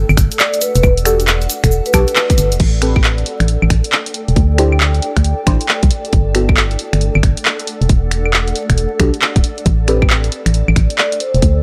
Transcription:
Already playing: synth stab B3 E4 F#4 A4, ambient pad A4 D5 F#5
0.09 fm bass G1, cabasa, claves
0.17 fm bass G1, finger snap, kick, open hi-hat, cabasa
0.31 closed hi-hat, cabasa
0.39 vibraphone D5, clap, cabasa
0.53 closed hi-hat, cabasa
0.61 vibraphone B4, open hi-hat, cabasa
0.75 fm bass E1, vibraphone B4, closed hi-hat, cabasa
0.83 fm bass E1, kick, cabasa, claves
0.97 closed hi-hat, cabasa
1.05 synth stab D4 F#4 G4 A4, finger snap, open hi-hat, cabasa
1.20 closed hi-hat, cabasa
1.27 clap, cabasa
1.42 closed hi-hat, cabasa
1.50 open hi-hat, cabasa
1.64 fm bass E1, vibraphone A4, finger snap, kick, closed hi-hat, cabasa
1.71 cabasa
1.86 vibraphone B4, closed hi-hat, cabasa
1.93 fm bass B1, synth stab D4 F#4 G4 A4, finger snap, kick, open hi-hat, cabasa, claves
2.07 closed hi-hat, cabasa
2.16 clap, cabasa
2.30 kick, closed hi-hat, cabasa
2.38 fm bass G1, open hi-hat, cabasa
2.52 fm bass E1, closed hi-hat, cabasa
2.60 fm bass A1, kick, closed hi-hat, crash
2.82 synth stab C4 G4 A4 B4, finger snap, open hi-hat
2.96 kick, claves
3.04 clap
3.18 closed hi-hat
3.24 ambient pad G5, open hi-hat
3.40 fm bass A1, finger snap, closed hi-hat
3.48 closed hi-hat
3.62 fm bass A1, claves
3.70 fm bass A1, finger snap, kick, open hi-hat
3.84 closed hi-hat
3.92 clap
4.06 closed hi-hat
4.14 open hi-hat
4.28 fm bass E1, closed hi-hat
4.36 fm bass D2, kick, closed hi-hat
4.58 synth stab D4 E4 G4 C5, finger snap, open hi-hat
4.72 claves
4.80 clap
4.95 closed hi-hat
5.02 open hi-hat
5.17 fm bass D2, finger snap, kick, closed hi-hat
5.24 closed hi-hat
5.47 fm bass A1, synth stab D4 E4 G4 C5, finger snap, kick, open hi-hat
5.61 closed hi-hat
5.69 clap
5.83 fm bass C2, kick, closed hi-hat
5.91 open hi-hat
6.05 closed hi-hat
6.13 fm bass G1, kick, closed hi-hat
6.35 synth stab B3 E4 F#4 A4, finger snap, open hi-hat
6.49 kick, claves
6.57 clap
6.71 closed hi-hat
6.79 open hi-hat
6.83 ambient pad F#5
6.93 fm bass G1, finger snap, closed hi-hat
7.01 closed hi-hat
7.15 fm bass G1, claves
7.23 fm bass G1, finger snap, kick, open hi-hat
7.37 closed hi-hat
7.45 clap
7.59 closed hi-hat
7.67 open hi-hat
7.81 fm bass E1, closed hi-hat
7.89 fm bass E1, kick, closed hi-hat
8.11 finger snap, open hi-hat
8.26 claves
8.33 clap
8.48 closed hi-hat
8.56 open hi-hat
8.70 fm bass E1, finger snap, kick, closed hi-hat
8.78 closed hi-hat
9.00 fm bass B1, synth stab D4 F#4 G4 A4, finger snap, kick, open hi-hat
9.14 closed hi-hat
9.22 clap
9.36 fm bass D1, kick, closed hi-hat
9.44 open hi-hat
9.58 closed hi-hat
9.66 fm bass A1, kick, closed hi-hat
9.88 synth stab C4 G4 A4 B4, finger snap, open hi-hat
10.02 kick, claves
10.10 clap
10.24 closed hi-hat
10.32 open hi-hat
10.46 fm bass A1, ambient pad G5, finger snap, closed hi-hat
10.54 closed hi-hat
10.68 fm bass A1, claves
10.76 fm bass A1, finger snap, kick, open hi-hat
10.90 closed hi-hat
10.98 vibraphone D5, clap
11.12 closed hi-hat
11.20 vibraphone C5, open hi-hat
11.34 fm bass E1, vibraphone C5, closed hi-hat
11.42 fm bass D2, kick, closed hi-hat

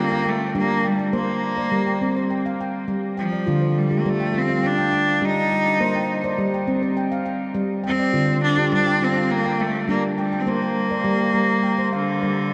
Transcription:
Already playing: handpan G3 F5 G5
0.00 cello A#3
0.12 handpan G5
0.25 cello A3, handpan G5
0.55 handpan G3 D4, cello A#3
0.85 cello G3, handpan G5
0.99 handpan G5
1.13 handpan A#3 C5, cello A#3
1.57 handpan C5 D5
1.71 handpan G3
1.86 handpan G5
2.01 handpan C4
2.17 handpan C5
2.30 handpan G5
2.46 handpan F5
2.61 handpan G5
2.88 handpan G3
3.17 cello F3, handpan G5
3.33 handpan D5
3.47 handpan D3 F4
3.62 handpan C5
3.78 cello G3
3.91 handpan F4 G4
4.00 cello A#3
4.06 handpan G3, cello A3
4.20 handpan G5
4.34 cello C4, handpan F4
4.50 handpan F5
4.63 cello D4, handpan G5
4.78 handpan G5
4.93 handpan G5
5.22 handpan G3 D4, cello D#4
5.51 handpan G5
5.66 handpan G5
5.80 handpan A#3 C5
5.95 handpan G5
6.24 handpan C5 D5
6.38 handpan G3
6.54 handpan G5
6.67 handpan C4
6.83 handpan C5
6.97 handpan G5
7.12 handpan F5
7.26 handpan G5
7.54 handpan G3
7.84 cello C4, handpan G5
7.99 handpan D5
8.13 handpan D3 F4
8.28 handpan C5
8.44 cello D4
8.57 handpan F4 G4
8.72 handpan G3, cello D4
8.87 handpan G5
9.01 cello C4, handpan F4
9.17 handpan F5
9.30 cello A#3, handpan G5
9.46 handpan G5
9.60 cello A3, handpan G5
9.87 handpan G3 D4, cello A#3
10.18 cello G3, handpan G5
10.32 handpan G5
10.41 cello C4
10.46 handpan A#3 C5, cello A#3
10.62 handpan G5
10.91 handpan C5 D5
11.04 handpan G3
11.20 handpan G5
11.34 handpan G3
11.63 handpan G5
11.78 handpan C5
11.93 cello D3, handpan F5
12.22 handpan G3 A#4

